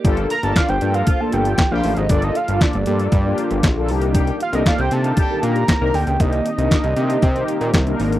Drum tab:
HH |xxxxxxxxx-xxx-ox|xxxxxxxxx-xxx-ox|xxxxxxxxx-xxx-ox|xxxxxxxxxxxxxxox|
CP |----x-------x---|----x-------x---|----x-------x---|----x-------x---|
SD |----o-------o---|----o-------o---|----o-------o---|----o-------o---|
BD |o---o---o---o---|o---o---o---o---|o---o---o---o---|o---o---o---o---|